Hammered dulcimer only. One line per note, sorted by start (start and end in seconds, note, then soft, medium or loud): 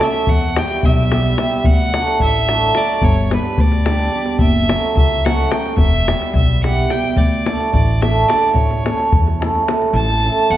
0.03 0.19 A3 medium
0.03 0.19 C#4 medium
0.03 0.19 F#4 medium
0.03 0.20 A4 medium
0.57 1.11 G3 medium
0.57 0.74 B3 soft
0.57 0.75 E4 medium
0.57 0.75 G4 medium
1.12 1.38 G3 medium
1.12 1.29 B3 medium
1.12 1.29 E4 medium
1.12 1.30 G4 medium
1.39 1.70 G3 medium
1.39 1.56 B3 medium
1.39 1.56 E4 medium
1.39 1.56 G4 medium
1.94 2.47 F#3 medium
1.94 2.11 A3 medium
1.94 2.12 D4 medium
1.94 2.12 F#4 medium
2.49 2.74 F#3 medium
2.49 2.66 A3 medium
2.49 2.66 D4 medium
2.49 2.67 F#4 medium
2.75 3.08 F#3 medium
2.75 2.92 A3 medium
2.75 2.93 D4 medium
2.75 2.93 F#4 medium
3.32 3.86 G3 medium
3.32 3.49 B3 medium
3.32 3.49 D4 soft
3.32 3.49 G4 medium
3.87 4.12 G3 medium
3.87 4.04 B3 medium
3.87 4.04 D4 medium
3.87 4.05 G4 medium
4.13 4.45 G3 medium
4.13 4.30 B3 medium
4.13 4.30 D4 medium
4.13 4.31 G4 medium
4.70 5.24 F#3 medium
4.70 4.87 A3 medium
4.70 4.87 C#4 medium
4.70 4.87 F#4 medium
5.25 5.50 F#3 medium
5.25 5.42 A3 medium
5.25 5.42 C#4 medium
5.25 5.42 F#4 medium
5.51 5.83 F#3 medium
5.51 5.68 A3 medium
5.51 5.68 C#4 medium
5.51 5.69 F#4 medium
6.08 6.62 G3 medium
6.08 6.25 B3 soft
6.08 6.25 E4 medium
6.08 6.25 G4 medium
6.63 6.89 G3 medium
6.63 6.80 B3 medium
6.63 6.80 E4 medium
6.63 6.81 G4 medium
6.90 7.22 G3 medium
6.90 7.07 B3 medium
6.90 7.07 E4 medium
6.90 7.08 G4 medium
7.47 7.63 A3 medium
7.47 7.63 D4 medium
7.47 7.64 F#4 medium
7.47 7.64 A4 medium
8.02 8.19 A3 medium
8.02 8.19 D4 medium
8.02 8.19 F#4 medium
8.02 8.19 A4 medium
8.28 8.45 A3 medium
8.28 8.45 D4 medium
8.28 8.45 F#4 medium
8.28 8.46 A4 medium
8.84 9.01 A3 medium
8.84 9.01 C#4 medium
8.84 9.02 E4 medium
8.84 9.02 A4 medium
9.39 9.56 A3 medium
9.39 9.57 C#4 medium
9.39 9.57 E4 medium
9.39 9.57 A4 medium
9.67 9.83 A3 medium
9.67 9.83 C#4 medium
9.67 9.84 E4 medium
9.67 9.84 A4 medium
10.23 10.40 A3 medium
10.23 10.40 C#4 medium
10.23 10.41 E4 medium
10.23 10.41 A4 medium